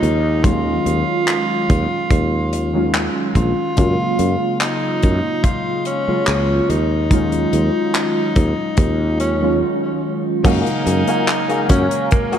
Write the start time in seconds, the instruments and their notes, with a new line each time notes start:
Already playing: tenor saxophone D#4
0.03 fretless electric bass D#2, closed hi-hat
0.43 synth keys D#3 F#3 G#3 C#4 F4, tenor saxophone F4, kick, closed hi-hat
0.86 fretless electric bass D#2, closed hi-hat
1.28 clap, closed hi-hat
1.70 fretless electric bass D#2, kick, closed hi-hat
2.11 fretless electric bass D#2, kick, closed hi-hat
2.53 closed hi-hat
2.73 synth keys D#3 F#3 G#3 C#4 F4
2.94 clap, closed hi-hat
3.35 fretless electric bass A#1, tenor saxophone F4, kick, closed hi-hat
3.76 fretless electric bass F#2, synth keys C#3 F#3 G#3 A#3 F4, kick, closed hi-hat
4.19 fretless electric bass F#2, closed hi-hat
4.61 tenor saxophone D#4, clap, closed hi-hat
5.02 fretless electric bass F#2, kick, closed hi-hat
5.44 tenor saxophone F4, kick, closed hi-hat
5.85 tenor saxophone C#4, closed hi-hat
6.07 synth keys C#3 F#3 G#3 A#3 F4, muted fretless electric bass stroke
6.27 fretless electric bass C#2, clap, closed hi-hat
6.69 fretless electric bass D#2, tenor saxophone D#4, closed hi-hat
7.10 synth keys D#3 F#3 G#3 C#4 F4, kick, closed hi-hat
7.32 closed hi-hat
7.53 fretless electric bass D#2, closed hi-hat
7.94 clap, closed hi-hat
8.36 fretless electric bass D#2, kick, closed hi-hat
8.77 fretless electric bass D#2, kick, closed hi-hat
9.20 tenor saxophone C#4, closed hi-hat
9.40 synth keys D#3 F#3 G#3 C#4 F4
10.43 fretless electric bass F#2, synth keys C#3 F#3 G#3 A#3 F5, analog synth pad F#3 A#4 F5 G#5, clean electric guitar A#3 F4 F#4 G#4, tenor saxophone D#4, kick, closed hi-hat, crash
10.67 closed hi-hat
10.86 fretless electric bass F#2, muted clean electric guitar stroke, closed hi-hat
11.08 clean electric guitar A#3 F4 F#4 G#4, closed hi-hat
11.28 clap, closed hi-hat
11.49 clean electric guitar A#3 F4 F#4 G#4, closed hi-hat
11.69 fretless electric bass F#2, tenor saxophone C#4, kick, closed hi-hat
11.91 closed hi-hat
12.11 tenor saxophone A#3, muted clean electric guitar stroke, kick, closed hi-hat
12.32 clean electric guitar A#3 F4 F#4 G#4, closed hi-hat